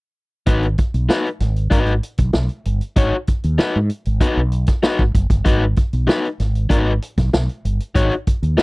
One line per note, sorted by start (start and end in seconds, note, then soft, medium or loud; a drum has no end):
0.46 0.75 G#1 loud
0.46 0.64 D#4 medium
0.46 0.64 F#4 medium
0.46 0.65 B4 medium
0.46 kick loud
0.46 closed hi-hat medium
0.63 closed hi-hat soft
0.78 kick medium
0.78 closed hi-hat medium
0.94 1.08 B1 medium
0.94 closed hi-hat soft
1.09 1.26 D#4 medium
1.09 1.26 F#4 medium
1.09 1.27 B4 medium
1.09 snare loud
1.26 closed hi-hat soft
1.40 1.68 G#1 medium
1.40 snare soft
1.40 closed hi-hat medium
1.56 closed hi-hat soft
1.70 1.99 G#1 medium
1.70 1.91 D#4 medium
1.70 1.92 F#4 medium
1.70 1.92 B4 medium
1.70 kick medium
1.70 closed hi-hat medium
1.86 closed hi-hat soft
2.03 closed hi-hat medium
2.18 2.33 B1 medium
2.18 kick medium
2.18 closed hi-hat medium
2.33 2.48 B1 medium
2.33 snare medium
2.49 closed hi-hat soft
2.65 2.80 G1 medium
2.65 closed hi-hat medium
2.81 closed hi-hat soft
2.96 3.11 G#1 medium
2.96 3.13 D#4 medium
2.96 3.14 F#4 medium
2.96 3.14 C#5 medium
2.96 kick loud
2.96 closed hi-hat medium
3.27 kick medium
3.27 closed hi-hat medium
3.44 3.58 D#2 medium
3.44 closed hi-hat soft
3.58 3.76 D#4 medium
3.58 3.76 F#4 medium
3.58 3.76 B4 medium
3.58 snare loud
3.76 3.89 G#2 medium
3.90 closed hi-hat medium
4.05 4.20 G#1 medium
4.05 closed hi-hat soft
4.21 4.38 D#4 medium
4.21 4.38 F#4 medium
4.21 4.39 B4 medium
4.21 muted fretless electric bass stroke soft
4.21 kick medium
4.21 closed hi-hat medium
4.37 4.65 B1 medium
4.52 closed hi-hat medium
4.67 kick medium
4.67 snare soft
4.67 closed hi-hat medium
4.83 5.00 D#4 medium
4.83 5.00 F#4 medium
4.83 5.01 B4 medium
4.83 snare loud
4.99 5.15 G#1 medium
4.99 kick medium
5.15 5.30 F#1 medium
5.15 kick medium
5.15 closed hi-hat medium
5.30 5.44 G1 medium
5.30 kick medium
5.30 closed hi-hat medium
5.45 5.73 G#1 medium
5.45 5.62 D#4 medium
5.45 5.62 F#4 medium
5.45 5.63 B4 medium
5.45 kick loud
5.45 closed hi-hat medium
5.76 kick medium
5.76 closed hi-hat medium
5.93 6.07 B1 medium
5.93 closed hi-hat soft
6.07 6.25 D#4 medium
6.07 6.25 F#4 medium
6.07 6.26 B4 medium
6.07 snare loud
6.25 closed hi-hat soft
6.40 6.67 G#1 medium
6.40 snare soft
6.40 closed hi-hat medium
6.55 closed hi-hat soft
6.70 6.98 G#1 medium
6.70 6.90 D#4 medium
6.70 6.91 F#4 medium
6.70 6.91 B4 medium
6.70 kick medium
6.70 closed hi-hat medium
7.02 closed hi-hat medium
7.17 7.32 B1 medium
7.17 kick medium
7.17 snare soft
7.17 closed hi-hat soft
7.33 7.47 B1 medium
7.33 snare loud
7.49 closed hi-hat soft
7.65 7.78 G1 medium
7.65 closed hi-hat medium
7.80 closed hi-hat medium
7.95 8.09 G#1 loud
7.95 8.12 D#4 medium
7.95 8.12 F#4 medium
7.95 8.12 C#5 medium
7.95 kick loud
7.95 closed hi-hat medium
8.12 closed hi-hat soft
8.27 kick medium
8.27 closed hi-hat medium
8.43 8.56 D#2 medium
8.43 closed hi-hat soft
8.57 8.63 D#4 medium
8.57 8.63 F#4 medium
8.57 8.63 B4 medium
8.57 muted fretless electric bass stroke soft
8.57 snare loud